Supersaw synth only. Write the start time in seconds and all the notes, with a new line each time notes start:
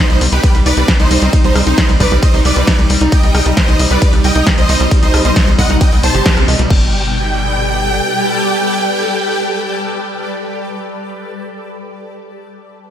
0.00 D#4 C5
0.32 G4 B4
0.66 B4 D5
1.00 D#4 C5
1.44 D#4 C5
1.67 D#4 C5
2.00 B4 D5
2.23 C5 D#5
2.45 B4 D5
3.12 D#5 G5
3.57 C5 D#5
3.91 B4 D5
4.24 D#5 G5
4.58 C5 D#5
5.03 C5 D#5
5.25 C5 D#5
5.59 D#5 F#5
5.81 D#5 G5
6.03 C5 A5
6.71 G5